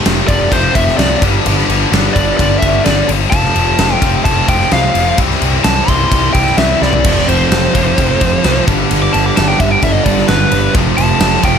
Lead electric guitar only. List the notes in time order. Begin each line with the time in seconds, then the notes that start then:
0.28 D5
0.52 C5
0.75 E5
0.98 D5
2.13 D5
2.37 D5
2.59 E5
2.85 D5
3.30 A5
3.94 G5
4.25 A5
4.49 G5
4.73 F5
5.64 A5
5.88 C6
6.33 G5
6.58 E5
6.82 D5
7.29 C5
9.02 D6
9.13 A5
9.26 D6
9.36 A5
9.48 G5
9.60 E5
9.71 G5
9.83 E5
9.92 D#5
10.04 D5
10.28 B4
10.97 A5
11.45 G5